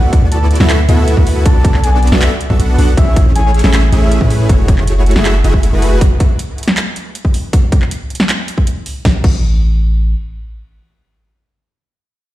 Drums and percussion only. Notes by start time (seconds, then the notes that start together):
0.13 kick, closed hi-hat
0.32 closed hi-hat
0.51 closed hi-hat
0.55 closed hi-hat
0.60 snare
0.70 clap, closed hi-hat
0.89 closed hi-hat
1.08 closed hi-hat
1.17 kick
1.27 open hi-hat
1.46 kick, closed hi-hat
1.65 kick, closed hi-hat
1.74 clap
1.84 closed hi-hat
2.03 closed hi-hat
2.07 closed hi-hat
2.12 snare
2.22 clap, closed hi-hat
2.41 closed hi-hat
2.50 kick
2.60 closed hi-hat
2.79 open hi-hat
2.97 kick, closed hi-hat
3.16 kick, closed hi-hat
3.36 closed hi-hat
3.54 closed hi-hat
3.59 closed hi-hat
3.64 snare
3.74 clap, closed hi-hat
3.92 closed hi-hat
4.12 closed hi-hat
4.21 kick
4.30 open hi-hat
4.49 kick, closed hi-hat
4.68 kick, closed hi-hat
4.78 clap
4.87 closed hi-hat
5.06 closed hi-hat
5.11 closed hi-hat
5.16 snare
5.25 clap, closed hi-hat
5.44 closed hi-hat
5.54 kick
5.63 closed hi-hat
5.82 open hi-hat
6.01 kick, closed hi-hat
6.20 kick, closed hi-hat
6.39 closed hi-hat
6.58 closed hi-hat
6.63 closed hi-hat
6.68 snare
6.77 clap, closed hi-hat
6.96 closed hi-hat
7.15 closed hi-hat
7.25 kick
7.34 open hi-hat
7.53 kick, closed hi-hat
7.72 kick, closed hi-hat
7.82 clap
7.91 closed hi-hat
8.10 closed hi-hat
8.15 closed hi-hat
8.20 snare
8.29 clap, closed hi-hat
8.48 closed hi-hat
8.58 kick
8.67 closed hi-hat
8.86 open hi-hat
9.05 kick, snare
9.24 kick, crash